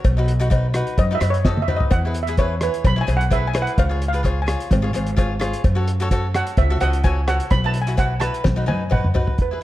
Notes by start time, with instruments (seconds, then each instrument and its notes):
0.04 upright bass B1, kick, closed hi-hat, cowbell
0.17 cavaquinho D#4 F#4 B4
0.28 closed hi-hat
0.40 cavaquinho D#4 F#4 B4, closed hi-hat
0.50 cavaquinho D#4 F#4 B4, kick, closed hi-hat, cowbell
0.74 cavaquinho D#4 F#4 B4, cross-stick, closed hi-hat
0.87 closed hi-hat
0.98 upright bass F#2, steel pan D#5, kick, closed hi-hat, cowbell
1.11 cavaquinho D#4 F#4 B4
1.15 steel pan E5
1.20 upright bass F#2, cavaquinho D#4 F#4 B4, cross-stick, closed hi-hat, cowbell
1.30 steel pan C#5, closed hi-hat
1.45 cavaquinho D#4 F#4 A4, steel pan D#5, kick, snare, cowbell
1.57 high tom
1.62 steel pan E5
1.68 cavaquinho D#4 F#4 B4, mid tom, cowbell
1.77 steel pan D#5, floor tom
1.91 upright bass E2, steel pan F#5, kick, closed hi-hat, cowbell
2.05 cavaquinho E4 G#4 B4
2.14 closed hi-hat
2.23 steel pan E5
2.27 cavaquinho E4 G#4 B4, closed hi-hat
2.37 cavaquinho E4 G#4 B4, steel pan C#5, kick, closed hi-hat, cowbell
2.61 cavaquinho E4 G#4 C#5, steel pan B4, cross-stick, closed hi-hat
2.74 closed hi-hat
2.84 upright bass B1, steel pan B5, kick, closed hi-hat, cowbell
2.96 cavaquinho E4 G#4 C#5
3.01 steel pan G#5
3.07 upright bass B1, cavaquinho E4 G#4 B4, closed hi-hat, cowbell
3.17 steel pan F#5
3.21 closed hi-hat
3.30 cavaquinho E4 G#4 B4, steel pan E5, kick, closed hi-hat, cowbell
3.47 steel pan G#5
3.53 cavaquinho E4 G#4 B4, cross-stick, closed hi-hat, cowbell
3.62 steel pan F#5
3.67 closed hi-hat
3.78 upright bass C#2, steel pan F5, kick, closed hi-hat, cowbell
3.89 cavaquinho F4 G#4 C#5
4.02 closed hi-hat
4.08 steel pan F5
4.13 cavaquinho F4 G#4 B4, closed hi-hat
4.23 cavaquinho F4 G#4 C#5, kick, closed hi-hat, cowbell
4.42 steel pan G#5
4.46 cavaquinho F4 G#4 C#5, cross-stick, closed hi-hat
4.60 closed hi-hat
4.71 upright bass G#1, kick, closed hi-hat, cowbell
4.82 cavaquinho F4 G#4 C#5
4.93 upright bass G#1, cavaquinho F4 G#4 C#5, closed hi-hat, cowbell
5.07 closed hi-hat
5.16 cavaquinho F4 G#4 C#5, kick, closed hi-hat, cowbell
5.39 cavaquinho F4 G#4 C#5, cross-stick, closed hi-hat, cowbell
5.53 closed hi-hat
5.64 upright bass F#2, kick, closed hi-hat, cowbell
5.75 cavaquinho F#4 A4 C#5
5.88 closed hi-hat
6.00 cavaquinho F#4 A4 C#5, closed hi-hat
6.11 cavaquinho F#4 A4 C#5, kick, closed hi-hat, cowbell
6.34 cavaquinho F#4 A4 C#5, steel pan F#5, cross-stick, closed hi-hat
6.47 closed hi-hat
6.57 upright bass C#2, steel pan E5, kick, closed hi-hat, cowbell
6.70 cavaquinho F#4 A4 E5
6.80 upright bass C#2, cavaquinho F#4 A4 D#5, steel pan F#5, closed hi-hat, cowbell
6.93 closed hi-hat
7.04 cavaquinho F#4 A4 C#5, steel pan G#5, kick, closed hi-hat, cowbell
7.28 cavaquinho F#4 A4 C#5, steel pan F#5, cross-stick, closed hi-hat, cowbell
7.40 closed hi-hat
7.50 upright bass B1, steel pan B5, kick, closed hi-hat, cowbell
7.64 cavaquinho E4 F#4 B4, steel pan A5
7.74 closed hi-hat
7.82 steel pan G#5
7.87 cavaquinho E4 F#4 B4, closed hi-hat
7.97 cavaquinho E4 F#4 B4, steel pan F#5, kick, closed hi-hat, cowbell
8.20 cavaquinho E4 F#4 B4, steel pan A5, cross-stick, closed hi-hat
8.34 closed hi-hat
8.44 upright bass B1, kick, snare, cowbell
8.56 cavaquinho D#4 F#4 B4
8.66 upright bass F#2, cavaquinho D#4 F#4 B4, steel pan G#5, high tom, cowbell
8.90 cavaquinho D#4 F#4 B4, steel pan F#5, kick, mid tom, cowbell
9.04 mid tom
9.14 cavaquinho D#4 F#4 B4, floor tom, cowbell
9.27 floor tom
9.38 upright bass E2, steel pan B4, kick, closed hi-hat
9.51 cavaquinho E4 G#4 B4